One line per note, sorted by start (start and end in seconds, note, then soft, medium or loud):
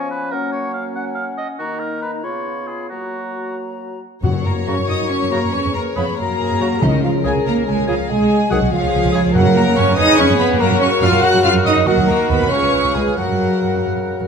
0.00 0.34 F3 medium
0.00 0.33 B3 medium
0.00 0.16 C#4 medium
0.00 1.42 C#4 medium
0.00 0.32 G#5 medium
0.11 0.32 B4 medium
0.31 1.42 F#3 medium
0.31 1.42 A#3 medium
0.31 0.95 C#4 medium
0.31 0.51 A#4 medium
0.31 0.95 F#5 medium
0.52 0.73 C#5 medium
0.73 0.83 F5 medium
0.95 1.61 C#4 medium
0.95 1.05 F#5 medium
0.95 1.62 F#5 medium
1.15 1.25 F5 medium
1.38 1.47 D#5 medium
1.59 2.26 D#3 medium
1.59 2.20 A#3 medium
1.59 2.25 D#4 soft
1.59 2.20 D#4 soft
1.59 1.81 F#4 medium
1.59 2.26 A#5 soft
1.79 2.01 A#4 medium
2.02 2.12 B4 medium
2.23 2.90 C#3 soft
2.23 2.88 B3 soft
2.23 2.90 F4 soft
2.23 2.68 C#5 medium
2.23 2.90 B5 soft
2.67 2.88 G#4 medium
2.89 4.00 F#3 soft
2.89 4.03 A#3 soft
2.89 3.56 F#4 medium
2.89 4.00 F#4 soft
2.89 4.00 A#5 soft
4.23 4.28 F#2 medium
4.23 4.84 F#2 medium
4.23 4.44 F#3 medium
4.23 4.31 F#4 medium
4.23 5.49 F#4 medium
4.23 5.49 A#4 medium
4.23 6.14 C#5 medium
4.23 4.44 F#5 medium
4.23 4.30 F#5 medium
4.34 4.38 F#2 soft
4.45 4.50 F#2 soft
4.45 4.67 A#3 medium
4.45 4.53 A#4 medium
4.45 4.67 A#5 medium
4.45 4.52 A#5 medium
4.66 4.71 F#2 medium
4.66 4.75 C#3 medium
4.66 4.75 C#4 medium
4.66 4.75 F#4 medium
4.66 4.76 C#5 medium
4.66 4.75 A#5 medium
4.66 4.88 C#6 medium
4.66 4.89 C#6 medium
4.77 4.82 F#2 soft
4.88 4.93 F#2 soft
4.88 5.09 D#4 medium
4.88 4.96 D#5 medium
4.88 5.09 D#6 medium
4.88 4.96 D#6 medium
4.99 5.03 F#2 soft
5.10 5.14 F#2 medium
5.10 5.31 C#4 medium
5.10 5.18 C#5 medium
5.10 5.31 C#6 medium
5.21 5.26 F#2 soft
5.31 5.35 F#2 soft
5.31 5.39 C#3 medium
5.31 5.53 A#3 medium
5.31 5.39 F#4 medium
5.31 5.52 A#4 medium
5.31 5.39 A#5 medium
5.31 5.53 A#5 medium
5.31 5.55 A#5 medium
5.43 5.47 F#2 soft
5.52 5.57 F2 medium
5.52 5.74 C#4 medium
5.52 6.16 G#4 medium
5.52 6.16 B4 medium
5.52 5.61 C#5 medium
5.52 5.74 C#6 medium
5.64 5.69 F2 soft
5.74 5.79 F2 soft
5.74 5.83 A#3 medium
5.74 5.95 A#4 medium
5.74 5.82 A#5 medium
5.74 5.81 A#5 medium
5.95 6.01 F2 medium
5.95 6.04 C#3 medium
5.95 6.17 B3 medium
5.95 6.03 G#4 medium
5.95 6.04 B4 medium
5.95 6.17 B5 medium
5.95 6.04 B5 medium
5.95 6.18 B5 medium
6.08 6.12 F2 soft
6.16 6.23 F#2 medium
6.16 6.80 A#3 medium
6.16 6.82 F#4 medium
6.16 6.39 A#4 medium
6.16 6.80 A#4 medium
6.16 6.80 C#5 medium
6.16 6.80 A#5 medium
6.16 6.85 A#5 medium
6.29 6.33 F#2 soft
6.39 6.44 F#2 medium
6.39 6.60 G#4 medium
6.50 6.54 F#2 soft
6.60 6.65 F#2 medium
6.60 6.68 C#3 medium
6.60 6.68 F#4 medium
6.60 6.82 F#4 medium
6.60 6.68 A#5 medium
6.72 6.76 F#2 soft
6.81 6.87 C#2 medium
6.81 7.42 C#3 medium
6.81 7.03 D#3 medium
6.81 7.03 D#4 medium
6.81 8.09 G#4 medium
6.81 8.07 A#4 medium
6.81 8.07 C#5 medium
6.81 7.04 D#5 medium
6.93 6.97 C#2 medium
7.02 7.08 C#2 soft
7.02 7.25 F3 medium
7.02 7.24 F4 medium
7.02 7.10 F5 medium
7.02 7.12 F5 medium
7.23 7.29 C#2 medium
7.23 7.32 C#3 medium
7.23 7.33 G#3 medium
7.23 7.45 G#4 medium
7.23 7.31 G#4 medium
7.23 7.32 G#5 medium
7.23 7.46 G#5 medium
7.23 7.34 G#5 medium
7.36 7.40 C#2 medium
7.45 7.51 C#2 medium
7.45 7.66 A#3 medium
7.45 7.67 A#4 medium
7.45 7.53 A#5 medium
7.45 7.55 A#5 medium
7.58 7.62 C#2 medium
7.66 7.72 C#2 medium
7.66 7.88 G#3 medium
7.66 7.88 G#4 medium
7.66 7.74 G#5 medium
7.66 7.88 G#5 medium
7.79 7.83 C#2 medium
7.87 7.93 C#2 medium
7.87 7.95 C#3 medium
7.87 7.97 F3 medium
7.87 7.95 F4 medium
7.87 7.96 G#4 medium
7.87 8.11 F5 medium
7.87 8.10 F5 medium
7.87 7.95 G#5 medium
8.00 8.04 C#2 medium
8.09 8.14 C2 medium
8.09 8.50 G#3 loud
8.09 8.50 G#4 medium
8.09 8.69 G#4 medium
8.09 8.71 G#4 medium
8.09 8.71 D#5 medium
8.09 8.51 G#5 medium
8.09 8.54 G#5 medium
8.21 8.25 C2 medium
8.30 8.35 C2 medium
8.50 8.56 C2 medium
8.50 8.59 D#3 medium
8.50 8.72 F#3 medium
8.50 8.72 F#4 medium
8.50 8.59 G#4 medium
8.50 8.58 F#5 medium
8.50 8.73 F#5 medium
8.62 8.66 C2 medium
8.70 8.77 C#2 medium
8.70 9.34 F3 loud
8.70 9.35 F4 medium
8.70 9.33 G#4 medium
8.70 9.34 G#4 medium
8.70 9.33 C#5 medium
8.70 9.34 F5 medium
8.70 9.08 F5 medium
8.83 8.87 C#2 medium
8.94 8.98 C#2 medium
9.05 9.09 C#2 medium
9.12 9.20 C#2 medium
9.12 9.22 C#3 medium
9.12 9.20 G#4 medium
9.12 9.22 G#5 medium
9.26 9.30 C#2 medium
9.33 9.94 F#2 medium
9.33 9.40 F#2 medium
9.33 9.94 C#3 medium
9.33 9.56 F#3 loud
9.33 9.43 F#4 medium
9.33 9.98 A#4 medium
9.33 9.97 A#4 medium
9.33 9.94 A#4 medium
9.33 9.94 C#5 medium
9.33 9.98 F#5 medium
9.33 9.56 F#5 medium
9.46 9.50 F#2 medium
9.55 9.61 F#2 medium
9.55 9.77 A#3 loud
9.55 9.77 A#4 medium
9.55 9.77 A#5 medium
9.55 9.62 A#5 medium
9.76 9.81 F#2 medium
9.76 9.98 C#4 loud
9.76 9.97 C#5 medium
9.76 9.97 C#6 medium
9.76 9.98 C#6 medium
9.89 9.93 F#2 medium
9.96 10.03 F2 medium
9.96 10.58 C#3 medium
9.96 10.18 D#4 loud
9.96 10.60 G#4 medium
9.96 10.60 B4 medium
9.96 10.59 B4 medium
9.96 10.18 D#5 loud
9.96 10.58 G#5 medium
9.96 10.18 D#6 loud
10.09 10.13 F2 medium
10.17 10.24 F2 medium
10.17 10.39 C#4 loud
10.17 10.39 C#5 medium
10.17 10.39 C#6 loud
10.17 10.25 C#6 medium
10.30 10.34 F2 medium
10.37 10.44 F2 medium
10.37 10.59 B3 loud
10.37 10.59 B4 medium
10.37 10.47 B5 medium
10.37 10.45 B5 medium
10.51 10.55 F2 medium
10.59 10.64 F#2 loud
10.59 11.21 C#3 medium
10.59 10.81 A#3 loud
10.59 11.84 F#4 loud
10.59 11.68 F#4 medium
10.59 11.68 A#4 medium
10.59 10.81 A#4 loud
10.59 11.22 A#4 medium
10.59 11.22 F#5 medium
10.59 10.66 A#5 loud
10.59 10.81 A#5 loud
10.69 10.74 F#2 medium
10.79 10.85 F#2 medium
10.79 10.88 C#4 loud
10.79 11.01 C#5 medium
10.79 11.02 C#6 medium
10.79 10.88 C#6 medium
11.01 11.05 F#2 loud
11.01 11.23 F4 loud
11.01 11.23 F5 loud
11.01 11.23 F6 medium
11.01 11.25 F6 loud
11.12 11.17 F#2 medium
11.22 11.27 F#2 medium
11.22 11.86 C#3 medium
11.22 11.44 F#4 loud
11.22 11.86 A#4 medium
11.22 11.44 F#5 medium
11.22 11.86 F#5 medium
11.22 11.44 F#6 medium
11.33 11.38 F#2 medium
11.43 11.48 F#2 medium
11.43 11.52 F4 loud
11.43 11.52 F5 medium
11.43 11.52 F6 loud
11.43 11.68 F6 medium
11.54 11.59 F#2 medium
11.65 11.69 F#2 medium
11.65 11.87 D#4 loud
11.65 11.86 D#5 loud
11.65 11.88 D#6 medium
11.65 11.75 D#6 medium
11.76 11.80 F#2 medium
11.85 11.90 D#2 loud
11.85 12.48 D#3 medium
11.85 12.09 F#3 loud
11.85 12.47 F#4 medium
11.85 11.95 F#4 loud
11.85 12.51 F#4 medium
11.85 12.47 A#4 medium
11.85 12.53 A#4 medium
11.85 12.10 F#5 medium
11.85 12.08 F#5 medium
11.85 12.48 F#5 medium
11.98 12.02 D#2 medium
12.08 12.13 D#2 medium
12.08 12.30 A#3 medium
12.08 12.30 A#4 medium
12.08 12.30 A#5 medium
12.08 12.32 A#5 medium
12.30 12.35 D#2 medium
12.30 12.52 B3 loud
12.30 12.52 B4 medium
12.30 12.53 B5 medium
12.30 12.52 B5 medium
12.41 12.46 D#2 medium
12.51 12.56 C#2 medium
12.51 13.17 C#3 medium
12.51 12.95 C#4 medium
12.51 13.19 F4 medium
12.51 13.18 G#4 medium
12.51 13.18 B4 medium
12.51 13.19 B4 medium
12.51 12.95 C#5 medium
12.51 13.19 F5 medium
12.51 12.97 C#6 medium
12.51 12.96 C#6 medium
12.62 12.67 C#2 medium
12.72 12.77 C#2 medium
12.84 12.89 C#2 medium
12.95 12.99 C#2 medium
12.95 13.04 G#3 medium
12.95 13.18 G#4 medium
12.95 13.18 G#5 medium
13.07 13.11 C#2 medium
13.17 13.22 F#2 medium
13.17 14.28 C#3 medium
13.17 13.85 F#3 medium
13.17 14.28 F#4 medium
13.17 13.85 F#4 medium
13.17 14.28 A#4 medium
13.17 14.18 A#4 medium
13.17 14.28 A#4 medium
13.17 14.28 F#5 medium
13.17 13.85 F#5 medium
13.30 13.34 F#2 soft
13.41 13.45 F#2 medium
13.63 13.68 F#2 medium
13.75 13.79 F#2 medium
13.86 13.90 F#2 soft
13.96 14.01 F#2 soft
14.08 14.13 F#2 medium
14.20 14.24 F#2 soft